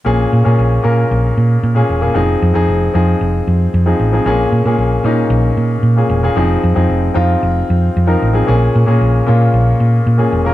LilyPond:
<<
  \new Staff \with { instrumentName = "Grand piano" } { \time 4/4 \key bes \minor \tempo 4 = 114 <bes, bes des' aes'>8 r16 <bes, bes des' aes'>8 r16 <bes, bes des' bes'>4~ <bes, bes des' bes'>16 r8 <bes, bes des' aes'>16 r16 <bes, bes des' aes'>16 | <f c' ees' aes'>8 r16 <f c' ees' aes'>8 r16 <f c' ees' aes'>4~ <f c' ees' aes'>16 r8 <f c' ees' aes'>16 r16 <f c' ees' aes'>16 | <bes, bes des' aes'>8 r16 <bes, bes des' aes'>8 r16 <bes, bes des' ees'>4~ <bes, bes des' ees'>16 r8 <bes, bes des' aes'>16 r16 <bes, bes des' aes'>16 | <f c' ees' aes'>8 r16 <f c' ees' aes'>8 r16 <f c' ees' f'>4~ <f c' ees' f'>16 r8 <f c' ees' bes'>16 r16 <f c' ees' aes'>16 |
<bes, bes des' aes'>8 r16 <bes, bes des' aes'>8 r16 <bes, bes des' f'>4~ <bes, bes des' f'>16 r8 <bes, bes des' aes'>16 r16 <bes, bes des' bes'>16 | }
  \new Staff \with { instrumentName = "Fingered electric bass" } { \clef bass \time 4/4 \key bes \minor bes,,8 bes,16 bes,16 bes,,8 bes,8 bes,,8 bes,8 bes,8 e,,8 | f,,8 f,16 f,16 f,,8 f,8 f,,8 f,8 f,8 a,,8 | bes,,8 bes,16 bes,16 bes,,8 bes,8 bes,,8 bes,8 bes,8 e,,8 | f,,8 f,16 f,16 f,,8 f,8 f,,8 f,8 f,8 a,,8 |
bes,,8 bes,16 bes,16 bes,,8 bes,8 bes,,8 bes,8 bes,8 e,,8 | }
>>